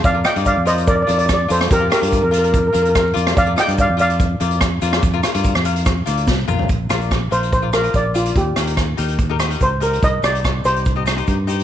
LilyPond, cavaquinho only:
\new Staff \with { instrumentName = "Cavaquinho" } { \time 4/4 \key bes \major \tempo 4 = 144 r16 <f' bes' d''>16 <f' bes' d''>16 <f' bes' d''>8 r16 <f' bes' d''>8 r8 <f' bes' d''>8 r8 <f' bes' d''>8 | r16 <f' bes' d''>16 <f' bes' c''>16 <f' bes' d''>8 r16 <f' bes' d''>8 r8 <f' bes' f''>8 r8 <f' bes' d''>8 | r16 <f' bes' d''>16 <f' bes' d''>16 <f' bes' d''>8 r16 <f' bes' f''>8 r8 <f' bes' d''>8 r8 <f' bes' d''>8 | r16 <f' bes' d''>16 <f' bes' c''>16 <f' bes' d''>8 r16 <f' bes' f''>8 r8 <f' bes' d''>8 r8 <f' bes' f''>8 |
r8 <f' bes' d''>8 r8 <f' bes' f''>8 r16 <f' bes' d''>16 <f' bes' d''>16 <f' bes' c''>8 r16 <f' bes' d''>8 | r8 <ees' g' bes'>8 r8 <ees' g' bes'>8 r16 <ees' g' bes'>16 <ees' g' c''>16 <ees' g' bes'>8 r16 <ees' g' bes'>8 | r8 <ees' g' c''>8 r8 <ees' g' c''>8 r16 <ees' g' ees''>16 <ees' g' c''>16 <ees' g' c''>8 r16 <ees' g' c''>8 | }